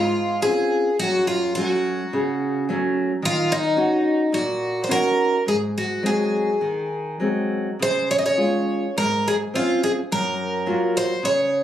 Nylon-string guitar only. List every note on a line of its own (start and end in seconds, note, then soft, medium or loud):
0.00 0.42 G#2 medium
0.44 0.89 C4 soft
0.44 0.89 C#4 soft
0.44 0.90 F4 soft
1.02 1.55 F#2 soft
1.57 2.02 F#3 soft
1.57 2.02 A3 soft
1.57 2.02 C#4 soft
2.13 2.67 C#3 medium
2.69 3.12 F#3 soft
2.69 3.13 A3 soft
2.69 3.13 C#4 soft
3.22 3.75 D#3 medium
3.76 4.21 C#4 soft
3.76 4.21 D#4 soft
3.76 4.21 F#4 medium
4.32 4.87 A#2 medium
4.89 5.34 C#4 soft
4.89 5.34 D#4 soft
4.89 5.35 F#4 soft
5.46 6.02 G#2 soft
6.03 6.49 F#3 soft
6.03 6.50 G#3 soft
6.03 6.50 C4 soft
6.61 7.19 D#3 medium
7.20 7.68 F#3 soft
7.20 7.68 G#3 soft
7.20 7.69 C4 soft
7.79 8.37 C#3 soft
8.37 8.85 G#3 soft
8.37 8.85 C#4 soft
8.37 8.85 F4 soft
8.97 9.53 G#2 soft
9.54 10.00 C4 soft
9.54 10.00 C#4 soft
9.54 10.00 F4 soft
10.12 10.66 F#2 medium
10.66 11.12 F#3 soft
10.66 11.12 A#3 soft
10.66 11.12 F4 soft
11.23 11.63 C#3 medium